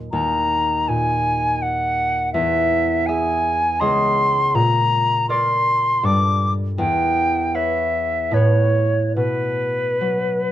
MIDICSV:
0, 0, Header, 1, 3, 480
1, 0, Start_track
1, 0, Tempo, 737101
1, 78, Time_signature, 3, 2, 24, 8
1, 2956, Tempo, 750939
1, 4876, Tempo, 807537
1, 5836, Tempo, 849858
1, 6605, End_track
2, 0, Start_track
2, 0, Title_t, "Flute"
2, 0, Program_c, 0, 73
2, 75, Note_on_c, 0, 82, 51
2, 573, Note_on_c, 0, 80, 59
2, 583, Note_off_c, 0, 82, 0
2, 1056, Note_on_c, 0, 78, 62
2, 1065, Note_off_c, 0, 80, 0
2, 1514, Note_off_c, 0, 78, 0
2, 1518, Note_on_c, 0, 76, 65
2, 1994, Note_on_c, 0, 80, 59
2, 2004, Note_off_c, 0, 76, 0
2, 2475, Note_on_c, 0, 84, 69
2, 2485, Note_off_c, 0, 80, 0
2, 2963, Note_on_c, 0, 82, 62
2, 2973, Note_off_c, 0, 84, 0
2, 3436, Note_off_c, 0, 82, 0
2, 3439, Note_on_c, 0, 84, 62
2, 3922, Note_on_c, 0, 86, 66
2, 3932, Note_off_c, 0, 84, 0
2, 4227, Note_off_c, 0, 86, 0
2, 4393, Note_on_c, 0, 79, 68
2, 4881, Note_on_c, 0, 76, 50
2, 4889, Note_off_c, 0, 79, 0
2, 5348, Note_on_c, 0, 73, 52
2, 5357, Note_off_c, 0, 76, 0
2, 5835, Note_off_c, 0, 73, 0
2, 5838, Note_on_c, 0, 71, 52
2, 6605, Note_off_c, 0, 71, 0
2, 6605, End_track
3, 0, Start_track
3, 0, Title_t, "Harp"
3, 0, Program_c, 1, 46
3, 0, Note_on_c, 1, 39, 30
3, 0, Note_on_c, 1, 46, 28
3, 0, Note_on_c, 1, 54, 25
3, 74, Note_off_c, 1, 39, 0
3, 82, Note_on_c, 1, 39, 42
3, 99, Note_off_c, 1, 46, 0
3, 173, Note_off_c, 1, 54, 0
3, 576, Note_on_c, 1, 46, 31
3, 1525, Note_on_c, 1, 40, 41
3, 1545, Note_off_c, 1, 39, 0
3, 1545, Note_off_c, 1, 46, 0
3, 2008, Note_on_c, 1, 68, 29
3, 2011, Note_on_c, 1, 76, 36
3, 2476, Note_off_c, 1, 68, 0
3, 2480, Note_on_c, 1, 75, 34
3, 2482, Note_on_c, 1, 37, 49
3, 2486, Note_on_c, 1, 68, 34
3, 2494, Note_off_c, 1, 40, 0
3, 2499, Note_off_c, 1, 76, 0
3, 2961, Note_on_c, 1, 46, 45
3, 2976, Note_off_c, 1, 75, 0
3, 2978, Note_off_c, 1, 37, 0
3, 2979, Note_off_c, 1, 68, 0
3, 3437, Note_on_c, 1, 70, 37
3, 3443, Note_on_c, 1, 74, 36
3, 3911, Note_on_c, 1, 43, 44
3, 3913, Note_off_c, 1, 74, 0
3, 3921, Note_on_c, 1, 69, 34
3, 3931, Note_on_c, 1, 74, 32
3, 3933, Note_off_c, 1, 70, 0
3, 3934, Note_off_c, 1, 46, 0
3, 4389, Note_on_c, 1, 40, 41
3, 4413, Note_off_c, 1, 69, 0
3, 4413, Note_off_c, 1, 74, 0
3, 4414, Note_off_c, 1, 43, 0
3, 4877, Note_on_c, 1, 71, 30
3, 4880, Note_on_c, 1, 73, 34
3, 5333, Note_on_c, 1, 45, 37
3, 5340, Note_off_c, 1, 71, 0
3, 5340, Note_off_c, 1, 73, 0
3, 5347, Note_on_c, 1, 71, 29
3, 5361, Note_on_c, 1, 73, 26
3, 5364, Note_off_c, 1, 40, 0
3, 5840, Note_on_c, 1, 47, 33
3, 5856, Note_off_c, 1, 45, 0
3, 6316, Note_on_c, 1, 54, 28
3, 6605, Note_off_c, 1, 47, 0
3, 6605, Note_off_c, 1, 54, 0
3, 6605, Note_off_c, 1, 71, 0
3, 6605, Note_off_c, 1, 73, 0
3, 6605, End_track
0, 0, End_of_file